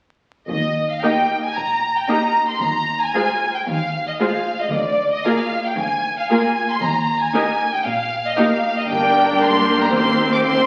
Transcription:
0.48 0.91 D#2 medium
0.48 0.92 D#2 medium
0.48 0.86 D#5 medium
0.91 1.03 F5 medium
1.03 1.11 A#3 soft
1.03 1.11 D#4 soft
1.03 1.11 G4 soft
1.03 1.11 D#5 soft
1.03 1.43 G5 medium
1.44 1.57 G#5 medium
1.56 1.98 A#2 medium
1.56 1.96 A#5 medium
1.97 2.10 G5 medium
2.08 2.17 A#3 soft
2.08 2.17 D#4 soft
2.08 2.17 G4 soft
2.08 2.17 D#5 soft
2.08 2.49 A#5 medium
2.49 2.62 C6 medium
2.61 3.04 D#2 medium
2.61 3.04 D#2 soft
2.61 3.02 A#5 medium
3.01 3.54 G#5 medium
3.15 3.23 G#3 soft
3.15 3.23 F4 soft
3.15 3.23 G#4 soft
3.15 3.23 C5 soft
3.55 3.60 G5 soft
3.68 4.09 D#2 medium
3.68 4.06 F5 medium
4.07 4.13 D#5 medium
4.20 4.28 G#3 soft
4.20 4.28 F4 soft
4.20 4.28 G#4 soft
4.20 4.29 C5 soft
4.20 4.58 F5 medium
4.61 4.73 D#5 medium
4.72 5.14 D2 medium
4.72 5.12 D5 medium
5.13 5.25 D#5 medium
5.25 5.34 A#3 soft
5.25 5.34 F4 soft
5.25 5.33 G#4 soft
5.25 5.33 A#4 soft
5.25 5.65 F5 medium
5.66 5.79 G5 medium
5.78 6.20 D2 medium
5.78 6.17 G#5 medium
6.19 6.31 F5 medium
6.30 6.39 A#3 soft
6.30 6.39 F4 soft
6.30 6.38 G#4 soft
6.30 6.38 A#4 soft
6.30 6.69 G#5 medium
6.71 6.83 C6 medium
6.82 7.23 D#2 medium
6.82 7.21 A#5 medium
7.21 7.72 G#5 medium
7.34 7.43 A#3 soft
7.34 7.43 D#4 soft
7.34 7.42 G4 soft
7.34 7.42 A#4 soft
7.73 7.86 G5 medium
7.85 8.27 A#2 medium
7.85 8.24 F5 medium
8.26 8.38 D#5 medium
8.38 8.46 A#3 soft
8.38 8.46 D#4 soft
8.38 8.46 G4 soft
8.38 8.46 A#4 soft
8.38 8.76 F5 medium
8.78 8.90 D#5 medium
8.89 9.37 G1 medium
8.89 9.89 G2 medium
8.89 10.66 A#3 medium
8.89 9.90 D4 soft
8.89 10.66 G4 medium
8.89 9.89 A#4 soft
8.89 9.40 G5 medium
9.42 9.81 C6 medium
9.83 9.94 A#5 medium
9.93 10.42 D#2 medium
9.93 10.66 D#2 medium
9.93 10.66 C4 soft
9.93 10.66 C5 medium
9.93 10.32 C6 medium
10.33 10.38 D6 medium
10.45 10.66 C6 medium

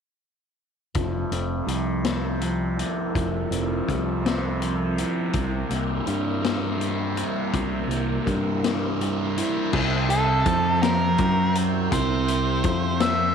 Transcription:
0.95 1.24 F1 medium
0.95 3.45 G2 medium
0.95 1.67 F3 medium
0.95 5.31 A4 medium
0.95 9.70 E5 medium
0.95 kick medium
0.95 closed hi-hat medium
1.31 1.60 F1 medium
1.31 2.06 C4 medium
1.31 closed hi-hat medium
1.58 2.22 C3 medium
1.67 2.82 C2 medium
1.67 2.41 F3 medium
1.67 closed hi-hat soft
2.04 3.52 C4 medium
2.04 snare medium
2.04 closed hi-hat medium
2.22 4.08 C3 soft
2.41 3.13 F3 medium
2.41 closed hi-hat medium
2.77 4.65 E4 medium
2.77 closed hi-hat medium
2.85 5.32 C2 medium
3.15 3.44 F1 medium
3.15 3.88 F3 medium
3.15 kick medium
3.15 closed hi-hat medium
3.45 5.93 G2 medium
3.51 3.80 F1 medium
3.51 4.24 C4 medium
3.51 closed hi-hat medium
3.88 5.03 C2 medium
3.88 4.60 F3 medium
3.88 kick medium
3.88 closed hi-hat soft
4.08 4.71 C3 medium
4.25 5.69 C4 medium
4.25 snare loud
4.25 closed hi-hat medium
4.62 5.35 F3 medium
4.62 closed hi-hat medium
4.71 6.56 C3 medium
4.98 5.72 E4 medium
4.98 closed hi-hat medium
5.33 7.80 C2 soft
5.33 5.63 C2 medium
5.33 7.52 C3 medium
5.33 9.69 A#4 medium
5.33 9.69 C5 medium
5.33 kick medium
5.33 closed hi-hat medium
5.69 5.99 C2 medium
5.69 6.42 A#3 medium
5.69 closed hi-hat soft
5.94 8.44 G2 medium
6.05 7.22 G2 medium
6.05 6.77 G3 medium
6.05 closed hi-hat soft
6.43 7.88 A#3 medium
6.43 snare loud
6.43 closed hi-hat medium
6.56 7.20 C3 medium
6.78 8.24 G3 medium
6.78 closed hi-hat soft
7.16 9.00 E4 medium
7.16 closed hi-hat medium
7.20 9.07 C3 medium
7.52 7.83 C2 medium
7.52 9.36 C3 medium
7.52 kick loud
7.52 closed hi-hat medium
7.81 11.60 C2 medium
7.88 8.18 C2 medium
7.88 8.62 A#3 medium
7.88 closed hi-hat medium
8.26 9.40 G2 medium
8.26 8.99 G3 medium
8.26 kick medium
8.26 closed hi-hat medium
8.45 13.35 G2 medium
8.63 9.73 A#3 medium
8.63 snare medium
8.63 closed hi-hat medium
9.00 9.73 G3 medium
9.00 closed hi-hat medium
9.07 10.36 C3 medium
9.38 9.74 E4 medium
9.38 closed hi-hat medium
9.73 10.43 C2 medium
9.73 10.46 C3 loud
9.73 13.35 C5 medium
9.73 13.35 E5 medium
9.73 13.35 G5 medium
9.73 kick loud
9.73 crash loud
10.10 10.83 A4 medium
10.10 closed hi-hat medium
10.36 10.97 C3 medium
10.46 11.15 F2 medium
10.46 11.18 F3 medium
10.46 kick medium
10.46 closed hi-hat medium
10.83 11.52 A#4 loud
10.83 snare loud
10.83 closed hi-hat medium
10.97 12.85 C3 medium
11.18 11.88 F#2 medium
11.18 11.91 F#3 loud
11.18 kick loud
11.18 closed hi-hat medium
11.55 closed hi-hat medium
11.60 13.35 C2 medium
11.92 12.61 C2 medium
11.92 12.64 C3 loud
11.92 13.05 C5 medium
11.92 kick loud
11.92 closed hi-hat medium
12.28 closed hi-hat medium
12.64 13.34 F2 medium
12.64 13.35 F3 medium
12.64 kick medium
12.64 closed hi-hat medium
12.85 13.35 C3 medium
13.00 13.35 E5 loud
13.00 snare loud
13.00 closed hi-hat medium

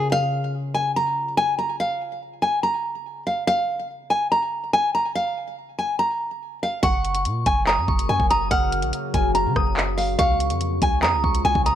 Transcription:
0.00 0.17 C#3 medium
0.00 1.96 C#4 medium
0.00 1.60 F4 medium
0.00 1.37 G#4 medium
0.12 0.51 F5 loud
0.74 0.91 G#5 medium
0.96 1.36 A#5 loud
1.37 1.54 G#5 loud
1.59 1.75 A#5 medium
1.80 2.19 F5 loud
2.42 2.59 G#5 medium
2.63 3.23 A#5 medium
3.27 3.43 F5 medium
3.47 3.87 F5 loud
4.10 4.26 G#5 medium
4.32 4.71 A#5 medium
4.73 4.90 G#5 loud
4.95 5.11 A#5 medium
5.15 5.55 F5 loud
5.79 5.95 G#5 medium
5.99 6.58 A#5 medium
6.63 6.79 F5 medium
6.83 7.27 F#1 loud
6.83 10.16 C#3 medium
6.83 10.16 F#3 medium
6.83 10.16 A#3 medium
6.83 10.16 F#4 medium
6.83 7.22 F#5 loud
6.83 7.63 C#6 loud
6.83 kick loud
6.83 closed hi-hat medium
7.05 closed hi-hat medium
7.15 closed hi-hat medium
7.25 7.45 A#2 loud
7.25 closed hi-hat medium
7.46 7.79 F#1 loud
7.46 7.62 G#5 medium
7.46 kick loud
7.46 closed hi-hat medium
7.67 8.07 A#5 medium
7.67 7.87 D#6 medium
7.67 clap loud
7.78 7.88 F#2 loud
7.88 8.08 F#1 loud
7.88 8.28 C#6 medium
7.88 kick loud
7.99 closed hi-hat medium
8.09 8.19 F#2 loud
8.09 8.25 G#5 loud
8.20 8.50 F#1 loud
8.20 kick loud
8.30 8.47 A#5 medium
8.30 8.50 D#6 medium
8.30 closed hi-hat medium
8.51 8.84 F#1 loud
8.51 8.90 F#5 loud
8.51 9.52 F6 loud
8.51 kick loud
8.51 closed hi-hat medium
8.72 closed hi-hat medium
8.82 8.93 A#1 loud
8.82 closed hi-hat medium
8.93 closed hi-hat medium
9.14 9.47 F#1 loud
9.14 9.30 G#5 medium
9.14 kick loud
9.14 closed hi-hat medium
9.35 9.94 A#5 medium
9.35 closed hi-hat medium
9.45 9.55 C#3 loud
9.56 10.16 F#1 loud
9.56 9.76 D#6 medium
9.56 kick loud
9.56 cross-stick loud
9.77 clap loud
9.98 10.14 F5 medium
9.98 open hi-hat medium
10.19 10.52 C#2 loud
10.19 11.75 C#3 medium
10.19 11.75 F3 medium
10.19 11.75 G#3 medium
10.19 11.75 F4 medium
10.19 10.58 F5 loud
10.19 10.99 C#6 medium
10.19 kick loud
10.19 closed hi-hat medium
10.40 closed hi-hat medium
10.50 10.80 F2 loud
10.50 closed hi-hat medium
10.61 closed hi-hat medium
10.82 11.04 C#2 loud
10.82 10.98 G#5 medium
10.82 kick medium
10.82 closed hi-hat medium
11.03 11.15 F2 loud
11.03 11.42 A#5 loud
11.03 11.23 D#6 medium
11.03 clap loud
11.13 11.23 C#2 loud
11.24 11.44 C#2 loud
11.24 11.63 C#6 medium
11.24 kick loud
11.35 closed hi-hat medium
11.45 11.55 C2 loud
11.45 11.61 G#5 loud
11.55 11.75 C#2 loud
11.55 kick loud
11.66 11.75 A#5 medium
11.66 11.75 D#6 medium
11.66 closed hi-hat medium

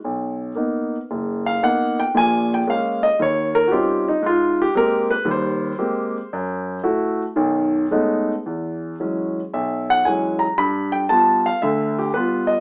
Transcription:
0.04 0.51 B1 medium
0.55 0.94 A#3 soft
0.55 0.95 B3 soft
0.55 0.95 D#4 medium
1.11 1.56 F#1 medium
1.46 1.62 F5 medium
1.63 2.00 A#3 medium
1.63 2.00 B3 soft
1.63 2.01 D#4 medium
1.63 1.98 F#5 medium
2.00 2.15 G5 medium
2.15 2.61 A#1 medium
2.15 2.61 A#2 medium
2.15 2.51 G#5 loud
2.54 2.68 G5 medium
2.67 3.05 G#3 medium
2.67 3.05 A#3 soft
2.67 3.05 C#4 medium
2.67 3.04 F5 medium
3.03 3.19 D#5 medium
3.19 3.65 D#2 medium
3.19 3.56 C#5 medium
3.55 3.71 A#4 medium
3.67 3.72 F#4 medium
3.71 4.09 G3 medium
3.71 4.09 C4 soft
3.71 4.10 C#4 soft
3.71 4.07 D#4 soft
3.71 4.10 F4 medium
3.71 4.06 G4 medium
4.08 4.23 D#4 medium
4.22 4.67 G#2 medium
4.22 4.59 F4 medium
4.62 4.74 G4 medium
4.75 5.12 G#3 medium
4.75 5.12 A#3 medium
4.75 5.12 C4 medium
4.75 5.12 G4 medium
4.75 5.10 A#4 medium
5.10 5.26 B4 medium
5.25 5.71 D#2 medium
5.25 5.71 G3 medium
5.31 6.29 C5 medium
5.78 6.16 G#3 medium
5.78 6.16 A#3 soft
5.78 6.17 C4 medium
5.78 6.16 G4 medium
6.33 6.78 F#2 medium
6.83 7.22 A3 medium
6.83 7.22 E4 medium
6.83 7.22 F#4 medium
7.36 7.85 B1 medium
7.36 7.84 D#3 medium
7.91 8.31 G#3 medium
7.91 8.31 A3 medium
7.91 8.31 B3 medium
7.91 8.31 C#4 soft
7.91 8.32 D#4 medium
8.46 8.93 E2 medium
9.00 9.38 E3 soft
9.00 9.39 F#3 soft
9.00 9.39 G#3 soft
9.00 9.39 C#4 medium
9.53 10.00 B1 medium
9.53 9.89 E5 medium
9.90 10.06 F#5 medium
10.05 10.45 E3 soft
10.05 10.44 F#3 soft
10.05 10.45 G#3 soft
10.05 10.45 C#4 medium
10.05 10.41 G#5 medium
10.39 10.57 A#5 medium
10.58 11.04 G2 medium
10.58 10.93 B5 medium
10.92 11.09 G5 medium
11.09 11.48 G3 soft
11.09 11.48 B3 soft
11.09 11.49 F4 medium
11.09 11.45 A5 medium
11.46 11.62 F5 medium
11.62 12.08 D2 medium
11.62 12.08 D3 medium
11.62 11.97 E5 medium
11.99 12.14 G4 medium
12.14 12.52 G3 soft
12.14 12.53 B3 soft
12.14 12.53 F4 medium
12.14 12.49 B4 medium
12.47 12.60 D#5 medium

